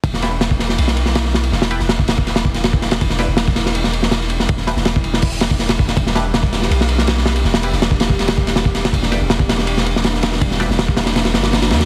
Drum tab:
RD |x-x-x-x-x-x-x--x|--x-x-x-xx-xx-xx|x-x-x-x-x-x-x-x-|x-x-x-x---x-xx-x|
HH |----------------|----------------|----------------|--------o-------|
SD |-oo-o-oo-o-oooo-|oo-oo-o-oo-oo-oo|-oo-o-oo-o-ooo-o|-oooo--o--o-oo-o|
BD |o----o----------|-----o-o--o--o--|o----o----------|o----o--o--o--o-|

RD |x-x-x-x-x-x-x--x|--x-x-x-xx-xx-xx|x-x-x-x-x-x-x-x-|x-x-x-xxxxxxxxxx|
HH |----------------|----------------|----------------|----------------|
SD |-oo-o-oo-o-oooo-|oo-oo-o-oo-oo-oo|-oo-o-oo-o-ooooo|-oooo-oooooooooo|
BD |o----o----------|-----o-o--o--o--|o----o----------|o----o----------|